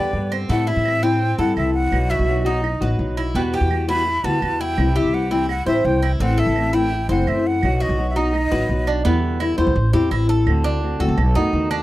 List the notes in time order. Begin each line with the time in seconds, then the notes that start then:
Already playing: E2 D3 G3 B3 G4 B4 D5
0.13 G2 D3 G3 B3 G4
0.32 C4, claves
0.49 A2 E3 G3 A3 C4 E4 F#5
0.67 E4 E5
0.76 A2
0.85 E3 G3 C4 E4, claves
1.02 G3 C4 E4 G5
1.21 muted nylon-string guitar stroke
1.38 G2 G3 C4 E4 A4 F#5
1.56 C2 E3 G3 C4 E4 E5, claves
1.74 F#5
1.91 B1 B2 F#3 B3 D#4 F#4, claves
2.10 F#4 E5
2.19 B1
2.27 F#3 B3 D#4 F#4
2.45 F#3 B3 D#4 F#4 D#5
2.63 muted nylon-string guitar stroke, claves
2.81 A1 F#3 B3 D#4 F#4 B4
2.99 B1 F#3 B3 D#4 F#4
3.17 E4, claves
3.34 E2 B2 E3 G3 B3 F#4 G5
3.54 G4 G5
3.61 E2
3.70 E3 G3 B3 F#4, claves
3.88 E3 G3 B3 E4 F#4 B5
4.06 muted nylon-string guitar stroke
4.24 D2 E3 G3 B3 F#4 B4 A5
4.42 E2 G3 B3 F#4, claves
4.61 E4 G5
4.77 C2 C3 E3 G3 C4 E4, claves
4.96 G4 E5
5.05 C2
5.13 E3 G3 C4 E4 F#5
5.31 E3 G3 C4 E4 G5
5.49 F#5, muted nylon-string guitar stroke, claves
5.66 A1 E3 G3 C4 E4 C5 E5
5.84 C2 E3 G3 C4 E4 G5
6.02 E4, claves
6.20 A1 E3 A3 C4 E4 F#5
6.38 A4 E5
6.47 A1
6.55 E3 A3 C4 E4, claves
6.73 A3 C4 E4 G5
6.91 muted nylon-string guitar stroke
7.09 F#1 A3 C4 E4 C5 F#5
7.27 F#2 E3 A3 C4 E4 E5, claves
7.47 F#5
7.62 B1 B2 F#3 B3 D#4 F#4, claves
7.80 F#4 D#5
7.89 B1
7.98 F#3 B3 D#4 F#4
8.10 E5
8.16 F#3 B3 D#4 F#4 D#5
8.34 muted nylon-string guitar stroke, claves
8.51 A1 F#3 B3 D#4 F#4 B4
8.69 B1 F#3 B3 D#4 F#4
8.87 D4, claves
9.04 E2 B2 D3 G3 B3 E4
9.40 D3 G3 B3 E4, claves
9.58 E2 D3 G3 B3 E4 C5
9.67 B1
9.76 A1, muted nylon-string guitar stroke
9.93 E2 G3 C4 E4 G4
10.11 A1 E3 G3 E4, claves
10.29 A4
10.47 D2 D3 A3 C4 F#4, claves
10.64 D4
10.82 D3 A3 C4 F#4
11.00 D2 A3 C4 F#4 A4
11.08 C2
11.17 B1, muted nylon-string guitar stroke, claves
11.35 F#2 D#3 A3 B3 D#4 F#4
11.53 D#2 D#3 A3 B3 F#4
11.71 D4, claves